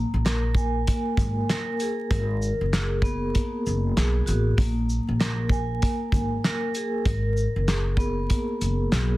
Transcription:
Already playing: A#3
0.14 A#1
0.25 A#4, snare, clap, closed hi-hat
0.55 G#5, kick, shaker
0.87 A#3, kick, closed hi-hat
1.17 G#1, kick, closed hi-hat, shaker
1.50 A#4, snare, clap, closed hi-hat
1.80 G#4, closed hi-hat, shaker
2.11 G#1 A#4, kick, closed hi-hat
2.42 shaker
2.61 F#1
2.73 G#4, snare, clap, closed hi-hat
3.02 B3, kick, shaker
3.35 A#3, kick, closed hi-hat
3.66 F#1, shaker
3.97 B1 G#4, snare, clap, closed hi-hat
4.26 A1 F#4, closed hi-hat, shaker
4.57 A#1 A#3, kick, closed hi-hat
4.90 shaker
5.08 A#1
5.20 A#4, snare, clap, closed hi-hat
5.49 G#5, kick, shaker
5.82 A#3, kick, closed hi-hat
6.12 G#1, kick, closed hi-hat, shaker
6.44 A#4, snare, clap, closed hi-hat
6.75 G#4, closed hi-hat, shaker
7.05 G#1 A#4, kick, closed hi-hat
7.37 shaker
7.56 F#1
7.68 G#4, snare, clap, closed hi-hat
7.97 B3, kick, shaker
8.29 A#3, kick, closed hi-hat
8.61 F#1, closed hi-hat, shaker
8.92 B1 G#4, snare, clap, closed hi-hat

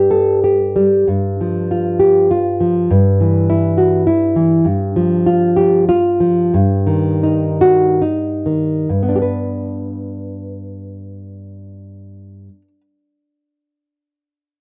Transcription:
Already playing: G2 G3 G4
0.11 A4
0.44 G4
0.76 G3
1.08 G2
1.41 F3
1.71 F4
2.00 G4
2.31 F4
2.60 F3
2.91 G2
3.21 E3
3.50 E4
3.78 F#4
4.07 E4
4.36 E3
4.65 G2
4.96 F3
5.26 F4
5.56 G4
5.89 F4
6.20 F3
6.54 G2
6.87 D#3
7.23 D#4
7.61 F#4
8.02 D#4
8.46 D#3
8.89 G2
9.03 B3
9.09 D4
9.16 G4
9.22 B4

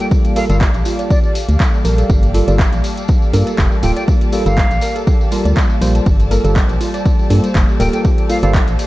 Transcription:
Already playing: G3 A#3 F4 G4 A4 D5 F5 A5
0.00 tambourine
0.11 kick, ride, tambourine
0.25 closed hi-hat, tambourine
0.36 G3 A#3 F4 A4 A#4 F5, open hi-hat, ride, tambourine
0.49 G1 G3 A#3 F4 A4 F5, closed hi-hat, tambourine
0.61 G4, kick, clap, ride, tambourine
0.74 A#1, closed hi-hat, tambourine
0.85 F4, open hi-hat, ride, tambourine
0.99 D5, closed hi-hat, tambourine
1.10 D5, kick, ride, tambourine
1.24 D5, tambourine
1.35 open hi-hat, ride, tambourine
1.49 D2, closed hi-hat, tambourine
1.60 kick, clap, ride, tambourine
1.74 tambourine
1.85 A#1 A#4, open hi-hat, ride, tambourine
1.98 A4, closed hi-hat, tambourine
2.10 G1 G4, kick, ride, tambourine
2.23 closed hi-hat, tambourine
2.34 G3 A#3 F4 A4, open hi-hat, ride, tambourine
2.48 G1 G3 A#3 F4 A4 D5, closed hi-hat, tambourine
2.59 D5, kick, clap, ride, tambourine
2.73 A#1, closed hi-hat, tambourine
2.84 open hi-hat, ride, tambourine
2.97 closed hi-hat, tambourine
3.08 kick, ride, tambourine
3.22 tambourine
3.33 G2 G3 A#3 F4 A4 A#4, open hi-hat, ride, tambourine
3.47 A4, closed hi-hat, tambourine
3.58 F1 G4, kick, clap, ride, tambourine
3.72 tambourine
3.83 D1 G3 A#3 F4 A4 G5, open hi-hat, ride, tambourine
3.97 D5 G5, closed hi-hat, tambourine
4.08 D5, kick, ride, tambourine
4.21 closed hi-hat, tambourine
4.32 G3 A#3 F4 A4, open hi-hat, ride, tambourine
4.46 G1 G3 A#3 F4 A4 F5, closed hi-hat, tambourine
4.57 kick, clap, ride, tambourine
4.71 A#1, closed hi-hat, tambourine
4.81 A#4, open hi-hat, ride, tambourine
4.96 A4, closed hi-hat, tambourine
5.07 G4, kick, ride, tambourine
5.21 tambourine
5.32 G3 A#3 F4 A#4, open hi-hat, ride, tambourine
5.45 D2 D5, closed hi-hat, tambourine
5.57 D5, kick, clap, ride, tambourine
5.70 tambourine
5.81 A#1 G3 A#3 F4 C5, open hi-hat, ride, tambourine
5.95 closed hi-hat, tambourine
6.06 G1 C5, kick, ride, tambourine
6.20 closed hi-hat, tambourine
6.31 G3 A#3 F4 A4 A#4, open hi-hat, ride, tambourine
6.44 G1 G3 A#3 F4 A4, closed hi-hat, tambourine
6.56 G4, kick, clap, ride, tambourine
6.69 A#1, closed hi-hat, tambourine
6.81 F4, open hi-hat, ride, tambourine
6.94 D5, closed hi-hat, tambourine
7.05 D5, kick, ride, tambourine
7.19 tambourine
7.30 G2 G3 A#3 F4 A4, open hi-hat, ride, tambourine
7.44 closed hi-hat, tambourine
7.55 F1, kick, clap, ride, tambourine
7.69 tambourine
7.80 D1 G3 A#3 F4 A4 A#4 G5, open hi-hat, ride, tambourine
7.93 A4 G5, closed hi-hat, tambourine
8.05 G4, kick, ride, tambourine
8.18 closed hi-hat, tambourine
8.29 G3 A#3 F4 A4 F5, open hi-hat, ride, tambourine
8.42 G1 G3 A#3 F4 A4 D5 F5, closed hi-hat, tambourine
8.54 D5, kick, clap, ride, tambourine
8.68 A#1, closed hi-hat, tambourine
8.79 open hi-hat, ride, tambourine

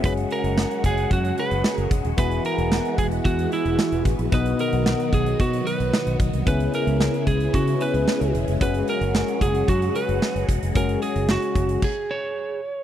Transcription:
Already playing: C#3
0.03 F#1 F#3 G#3 C#4 F#4 G#4 B4, kick, closed hi-hat
0.17 closed hi-hat
0.30 A#4, closed hi-hat
0.44 F#1, closed hi-hat
0.58 snare
0.71 closed hi-hat
0.84 F#1 G#4, kick, closed hi-hat
0.98 closed hi-hat
1.11 F#2 F#4, kick, closed hi-hat
1.25 closed hi-hat
1.38 B4, closed hi-hat
1.51 F#1, closed hi-hat
1.64 snare
1.75 F#1 A#4, closed hi-hat
1.91 E1, kick, closed hi-hat
2.04 D#1, closed hi-hat
2.17 E1 E3 B3 E4 F#4 G#4 B4, kick, closed hi-hat
2.31 closed hi-hat
2.45 A#4, closed hi-hat
2.58 E1, closed hi-hat
2.72 snare
2.85 closed hi-hat
2.98 E1 G#4, kick, closed hi-hat
3.11 closed hi-hat
3.25 E2 F#4, kick, closed hi-hat
3.39 closed hi-hat
3.52 E4, closed hi-hat
3.65 E1, closed hi-hat
3.79 snare
3.92 E1, closed hi-hat
4.05 A1, kick, closed hi-hat
4.19 A#1, closed hi-hat
4.32 B1 B2 D#3 F#3 B3 D#4 F#4 B4 D#5, kick, closed hi-hat
4.46 closed hi-hat
4.59 A#4, closed hi-hat
4.73 B1, closed hi-hat
4.86 snare
5.00 closed hi-hat
5.13 B1 G#4, kick, closed hi-hat
5.26 closed hi-hat
5.40 B2 F#4, kick, closed hi-hat
5.53 closed hi-hat
5.67 B4, closed hi-hat
5.80 B1, closed hi-hat
5.94 snare
6.07 B1, closed hi-hat
6.20 B1, kick, closed hi-hat
6.33 C2, closed hi-hat
6.46 C#2 C#3 G#3 B3 C#4 E4 G#4 B4, kick, closed hi-hat
6.60 closed hi-hat
6.74 A#4, closed hi-hat
6.87 C#2, closed hi-hat
7.01 snare
7.14 closed hi-hat
7.27 C#2 G#4, kick, closed hi-hat
7.40 closed hi-hat
7.54 C#3 F#4, kick, closed hi-hat
7.67 closed hi-hat
7.80 B3 C#4 E4 G#4 B4, closed hi-hat
7.94 C#2, closed hi-hat
8.08 snare
8.21 C#2, closed hi-hat
8.34 E1, closed hi-hat
8.47 F1, closed hi-hat
8.60 F#1 F#3 G#3 C#4 F#4 G#4 B4, kick, closed hi-hat
8.74 closed hi-hat
8.88 A#4, closed hi-hat
9.01 F#1, closed hi-hat
9.15 snare
9.28 closed hi-hat
9.41 F#1 G#4, kick, closed hi-hat
9.55 closed hi-hat
9.68 F#2 F#4, kick, closed hi-hat
9.82 closed hi-hat
9.95 B4, closed hi-hat
10.09 F#1, closed hi-hat
10.22 snare
10.35 F#1, closed hi-hat
10.49 E1, kick, closed hi-hat
10.63 F1, closed hi-hat
10.74 G#3 C#4 F#4 G#4 A#4, kick, closed hi-hat
10.89 closed hi-hat
11.02 G#4, closed hi-hat
11.16 F#1, closed hi-hat
11.29 F#4, snare
11.42 closed hi-hat
11.55 F#1, kick, closed hi-hat
11.69 closed hi-hat
11.82 G#4, kick, crash
12.11 C#5

